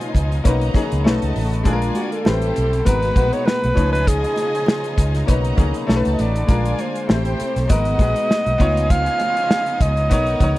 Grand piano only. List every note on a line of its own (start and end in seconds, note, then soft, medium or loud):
0.00 0.47 F3 medium
0.00 0.45 C#4 medium
0.00 0.46 D#4 medium
0.00 0.47 B4 medium
0.44 0.71 A#3 medium
0.44 0.72 C#4 medium
0.44 0.72 D#4 medium
0.44 0.73 B4 loud
0.73 1.04 A#3 medium
0.73 1.04 C#4 medium
0.73 1.05 D#4 medium
0.73 1.06 G#4 medium
1.04 1.59 A3 loud
1.04 1.59 C#4 medium
1.04 1.60 D#4 medium
1.04 1.61 B4 loud
1.63 2.25 G#3 medium
1.63 2.25 D4 medium
1.63 2.26 F4 medium
1.63 1.73 G#4 medium
1.73 2.30 A#4 loud
2.24 2.79 A3 medium
2.24 2.80 C4 medium
2.24 2.80 G4 medium
2.24 2.81 B4 medium
2.84 3.13 G#3 medium
2.84 3.13 B3 medium
2.84 3.14 F#4 medium
2.84 3.14 A#4 medium
3.15 3.76 G#3 medium
3.15 3.23 A#3 medium
3.15 3.77 F#4 medium
3.15 3.75 B4 medium
3.22 3.80 B3 medium
3.74 4.84 F3 medium
3.74 4.84 C#4 medium
3.74 4.85 D#4 medium
3.74 4.85 B4 medium
5.26 5.54 A#3 medium
5.26 5.55 C#4 medium
5.26 5.55 D#4 medium
5.26 5.56 B4 loud
5.56 5.87 A#3 medium
5.56 5.86 C#4 medium
5.56 5.87 D#4 medium
5.56 5.89 G#4 medium
5.87 6.42 A3 medium
5.87 6.42 C#4 medium
5.87 6.43 D#4 medium
5.87 5.96 A4 medium
5.96 6.46 B4 loud
6.47 7.08 G#3 medium
6.47 7.09 D4 medium
6.47 7.09 F4 medium
6.47 7.10 A#4 medium
7.07 7.62 A3 medium
7.07 7.63 C4 medium
7.07 7.63 G4 medium
7.07 7.64 C5 medium
7.68 7.96 G#3 medium
7.68 7.96 B3 medium
7.68 7.97 F#4 medium
7.68 7.97 A#4 medium
7.98 8.59 G#3 medium
7.98 8.56 B3 medium
7.98 8.60 F#4 medium
7.98 8.61 G#4 medium
8.58 9.67 B3 loud
8.58 9.68 D#4 medium
8.58 9.68 F4 medium
8.58 9.69 C#5 loud
10.09 10.37 B3 medium
10.09 10.37 D#4 medium
10.09 10.38 A#4 medium
10.09 10.39 C#5 medium
10.41 10.59 B3 medium
10.41 10.59 D#4 medium
10.41 10.59 A#4 medium
10.41 10.59 C#5 medium